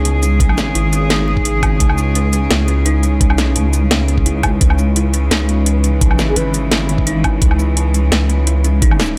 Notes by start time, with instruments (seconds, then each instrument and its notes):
Already playing: wobble bass C#2, cello section C#3 G#3 G#4
0.05 kalimba C#3, closed hi-hat
0.23 kalimba C#4, closed hi-hat, shaker
0.40 kalimba C#4, kick, closed hi-hat
0.49 low woodblock
0.57 kalimba C#4, snare, shaker
0.75 wobble bass G#1, kalimba E4, closed hi-hat
0.93 kalimba C#4, closed hi-hat, shaker
1.10 kalimba D#4, snare, closed hi-hat
1.28 kalimba C#4
1.37 kick
1.45 kalimba C#4, closed hi-hat
1.63 kalimba C#4, kick, closed hi-hat, low woodblock
1.80 wobble bass C#2, kalimba C#3, kick, closed hi-hat
1.90 low woodblock
1.98 kalimba C#4, shaker
2.15 kalimba C#4, closed hi-hat
2.33 kalimba C#4, closed hi-hat, shaker
2.50 wobble bass C#2, kalimba E4, snare, closed hi-hat
2.68 kalimba C#4, closed hi-hat
2.85 kalimba D#4, closed hi-hat
3.03 kalimba C#4, closed hi-hat, shaker
3.21 wobble bass C2, kalimba C#4, kick, closed hi-hat
3.30 low woodblock
3.38 kalimba C#4, snare, closed hi-hat, shaker
3.56 wobble bass C#2, kalimba C#3, closed hi-hat
3.73 kalimba C#4, closed hi-hat, shaker
3.91 kalimba C#4, snare, closed hi-hat
4.08 kalimba C#4, closed hi-hat
4.18 kick
4.26 wobble bass C#2, kalimba E4, closed hi-hat
4.43 kalimba C#4, kick, closed hi-hat, low woodblock
4.61 wobble bass C#2, cello section E3, kalimba C#4, kick, closed hi-hat
4.70 low woodblock
4.79 kalimba C#4, shaker
4.96 kalimba E4, closed hi-hat
5.14 kalimba C#4, closed hi-hat, shaker
5.31 wobble bass C#2, kalimba D#4, snare, closed hi-hat
5.49 kalimba C#4, closed hi-hat
5.66 kalimba C#4, closed hi-hat
5.84 kalimba C#4, closed hi-hat, shaker
6.01 kalimba C#3, kick, closed hi-hat
6.11 low woodblock
6.19 kalimba C#4, snare, shaker
6.28 soft synth lead G#4
6.36 wobble bass G#1, kalimba C#4, soft synth lead B4, closed hi-hat
6.46 soft synth lead B4
6.54 kalimba C#4, closed hi-hat, shaker
6.72 kalimba E4, snare, closed hi-hat
6.89 kalimba C#4, closed hi-hat
6.98 kick
7.07 kalimba D#4, closed hi-hat
7.24 kalimba C#4, kick, closed hi-hat, low woodblock
7.42 wobble bass C#2, kalimba C#4, kick, closed hi-hat
7.51 low woodblock
7.59 kalimba C#4, shaker
7.77 kalimba C#3, closed hi-hat
7.94 kalimba C#4, closed hi-hat, shaker
8.12 kalimba C#4, snare, closed hi-hat
8.29 kalimba C#4, closed hi-hat
8.47 kalimba E4, closed hi-hat
8.64 kalimba C#4, closed hi-hat, shaker
8.82 kalimba D#4, kick, closed hi-hat
8.91 low woodblock
9.00 kalimba C#4, snare, shaker
9.03 shaker